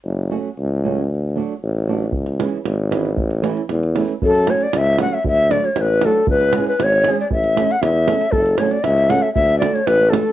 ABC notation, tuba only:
X:1
M:2/4
L:1/8
Q:1/4=116
K:F#m
V:1 name="Tuba" clef=bass
F,,,2 C,,2 | D,,2 A,,,2 | C,,2 G,,,2 | A,,,2 E,,2 |
F,,2 C,,2 | D,,2 A,,,2 | C,,2 G,,,2 | A,,,2 E,,2 |
F,,,2 C,,2 | D,,2 A,,,2 |]